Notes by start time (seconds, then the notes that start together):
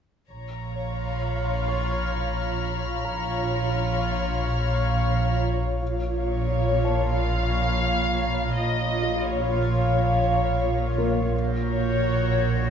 0.29 A#1 F4 C#5 F5 A#5
0.98 B5
1.66 C#6 F6
3.05 A#1 F4 C#5 F5 A#5
5.80 A#1 A#2 F4 C#5 F5 A#5
6.16 C#5
6.49 B5
6.85 C#5 A5
7.19 F5
8.56 A#1 A#2 F4 C#5 D#5 F5
9.26 C#5
10.98 A#3 A#4
11.32 A#1 A#2 F#4 A#4 C#5 G6 A#6
11.68 C#5